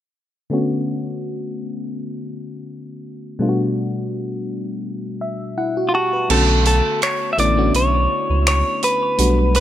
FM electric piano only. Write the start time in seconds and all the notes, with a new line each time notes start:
0.50 D3 A3 B3 C#4 F#4
3.39 B2 G3 A3 B3 D4 F4
3.49 F#4
5.21 E5
5.58 E4 F#5
5.77 F#4
5.94 G4 A5
6.13 B4
6.29 D3 A3 B3 C#4 F#4
7.37 D3 A3 B3 C#4 E4
7.57 A3 B3 C#4 D4 F#4
9.18 G3 A3 B3 D4 F#4